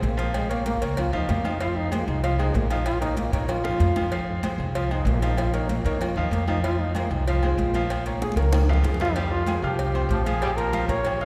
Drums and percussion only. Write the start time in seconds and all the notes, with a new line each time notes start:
0.03 cowbell, high conga, low timbale
0.19 cowbell, low agogo
0.34 cowbell, high conga, low agogo
0.50 cowbell, high conga, low agogo
0.66 cowbell, high conga
0.82 cowbell, high conga, low agogo
0.97 cowbell, high conga, low conga, low agogo
1.13 high conga, low conga
1.29 cowbell, high conga, low timbale, low agogo
1.45 high conga, low agogo
1.60 cowbell, high conga, low agogo
1.76 high conga
1.92 cowbell, high conga, low agogo
2.08 high conga, low agogo
2.23 cowbell, high conga
2.38 high conga, low agogo
2.54 cowbell, high conga, low timbale
2.70 cowbell, low agogo
2.86 cowbell, low agogo
3.02 cowbell, high conga, low agogo
3.17 cowbell, high conga
3.33 cowbell, high conga, low agogo
3.48 cowbell, high conga, low conga, low agogo
3.65 high bongo, high conga
3.80 cowbell, high conga, low agogo
3.96 low bongo, high conga, low agogo
4.11 cowbell, high conga, low agogo
4.28 high conga
4.43 cowbell, high conga, low agogo
4.59 high conga, low agogo
4.75 cowbell, high conga
4.90 high conga, low agogo
5.05 cowbell, high conga, low timbale
5.23 cowbell, low agogo
5.37 cowbell, high conga, low agogo
5.54 cowbell, high conga, low agogo
5.69 cowbell, high conga
5.85 cowbell, high conga, low agogo
6.01 cowbell, high conga, low conga, low agogo
6.16 high conga, low conga
6.32 cowbell, high conga, low agogo
6.48 high conga, low agogo
6.64 cowbell, high conga, low agogo
6.79 high conga
6.95 cowbell, high conga, low agogo
7.11 high conga, low agogo
7.27 cowbell, high conga
7.42 high conga, low agogo
7.58 cowbell, high conga
7.74 cowbell, high conga, low agogo
7.90 cowbell, high conga, low agogo
8.06 cowbell, high conga, low agogo
8.22 cowbell, high bongo, high conga
8.32 high conga
8.37 cowbell, high bongo, low agogo
8.42 low conga
8.53 cowbell, low bongo, high conga, high timbale, low agogo
8.63 low conga
8.69 low conga, low timbale
8.84 cowbell, low bongo, low conga, low agogo
8.94 low conga
9.00 low bongo, low timbale, low agogo
9.05 low conga
9.16 cowbell, high conga, low agogo
9.32 high conga
9.47 cowbell, high conga, low agogo
9.62 high conga, low agogo
9.79 cowbell, high conga
9.95 high conga, low agogo
10.11 cowbell, high conga
10.26 cowbell, high conga, low agogo
10.42 cowbell, high conga, low agogo
10.58 cowbell, high conga, low agogo
10.73 cowbell, high conga
10.89 cowbell, high conga, low agogo
11.05 cowbell, high conga, low conga, low agogo
11.21 high conga, low conga